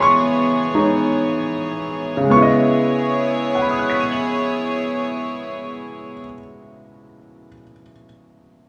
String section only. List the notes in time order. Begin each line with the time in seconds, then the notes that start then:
Already playing: E3 B3 G#4 C#5
2.29 B3 E4 G#4 C#5